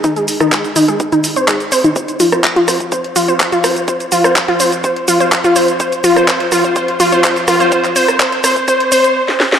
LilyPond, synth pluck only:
\new Staff \with { instrumentName = "Synth pluck" } { \time 4/4 \key f \minor \tempo 4 = 125 ees'16 aes'16 r16 ees'16 aes'16 r16 ees'16 aes'16 r16 ees'16 r16 c''16 aes'16 r16 c''16 ees'16 | c''16 r16 f'16 c''16 r16 f'16 c''16 r16 c''16 r16 f'16 c''16 r16 f'16 c''16 r16 | c''16 r16 f'16 c''16 r16 f'16 c''16 r16 c''16 r16 f'16 c''16 r16 f'16 c''16 r16 | c''16 r16 f'16 c''16 c''16 r16 f'16 c''16 c''16 r16 f'16 c''16 c''16 r16 f'16 c''16 |
c''16 r16 c''16 r16 c''16 r16 c''16 r16 c''16 r16 c''16 r4 r16 | }